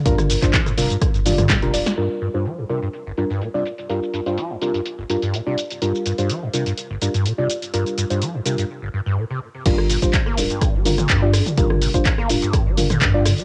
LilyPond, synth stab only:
\new Staff \with { instrumentName = "Synth stab" } { \time 4/4 \key g \minor \tempo 4 = 125 <g d' f' bes'>8. <g d' f' c''>16 r8 <g d' f' bes'>16 r8. <g d' f' d''>16 r8 <g d' f' bes'>16 <g d' f' d''>16 r16 | <g d' f' bes'>8. <g d' f' c''>16 r8 <g d' f' bes'>16 r8. <g d' f' bes'>16 r8 <g d' f' d''>16 r8 | <g d' f' bes'>8. <g d' f' c''>16 r8 <g d' f' bes'>16 r8. <g d' f' bes'>16 r8 <g d' f' d''>16 r8 | <g d' f' bes'>8. <g d' f' c''>16 r8 <g d' f' bes'>16 r8. <g d' f' bes'>16 r8 <g d' f' d''>16 r8 |
<g d' f' bes'>8. <g d' f' c''>16 r8 <g d' f' bes'>16 r2 r16 | <g d' f' bes'>8. <g d' f' c''>16 r8 <g d' f' bes'>16 r8. <g d' f' bes'>16 r8 <g d' f' d''>16 r8 | <g d' f' bes'>8. <g d' f' c''>16 r8 <g d' f' bes'>16 r8. <g d' f' bes'>16 r8 <g d' f' d''>16 r8 | }